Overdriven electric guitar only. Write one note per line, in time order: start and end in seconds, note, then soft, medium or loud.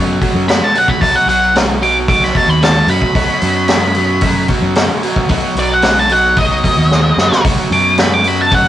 0.00 0.19 B2 medium
0.00 0.19 F#3 medium
0.21 0.45 B2 medium
0.21 0.46 F#3 loud
0.48 0.72 B2 medium
0.48 0.73 G#3 medium
0.74 0.99 B2 medium
0.74 0.99 F#3 medium
1.01 1.25 B2 medium
1.01 1.26 F#3 medium
1.28 1.52 B2 medium
1.28 1.53 F#3 medium
1.55 1.79 B2 medium
1.55 1.80 G#3 medium
1.82 2.06 B2 medium
1.82 2.06 F#3 medium
2.09 2.33 B2 medium
2.09 2.33 F#3 medium
2.36 2.60 B2 medium
2.36 2.60 F#3 medium
2.61 2.86 B2 medium
2.61 2.86 G#3 medium
2.89 3.13 B2 medium
2.89 3.13 F#3 medium
3.15 3.40 B2 medium
3.15 3.40 F#3 medium
3.42 3.67 B2 medium
3.42 3.67 F#3 medium
3.70 3.94 B2 medium
3.70 3.94 G#3 medium
3.96 4.21 B2 medium
3.96 4.21 F#3 medium
4.23 4.47 B2 medium
4.23 4.47 F#3 medium
4.49 4.74 B2 medium
4.49 4.74 F#3 medium
4.76 5.01 B2 medium
4.76 5.01 G#3 medium
5.02 5.27 B2 medium
5.02 5.28 F#3 medium
5.30 5.54 B2 medium
5.30 5.54 F#3 loud
5.57 5.81 B2 medium
5.57 5.81 F#3 medium
5.83 6.08 B2 medium
5.83 6.08 G#3 medium
6.10 6.35 B2 medium
6.10 6.35 F#3 medium
6.38 6.62 B2 medium
6.38 6.62 F#3 medium
6.65 6.89 B2 medium
6.65 6.89 F#3 medium
6.93 7.16 B2 medium
6.93 7.16 G#3 medium
7.19 7.43 B2 medium
7.19 7.43 F#3 medium
7.46 7.69 B2 medium
7.46 7.69 F#3 loud
7.72 7.96 B2 medium
7.72 7.96 F#3 medium
7.98 8.22 B2 medium
7.98 8.23 G#3 medium
8.25 8.49 B2 medium
8.25 8.50 F#3 medium
8.52 8.68 B2 medium
8.52 8.68 F#3 medium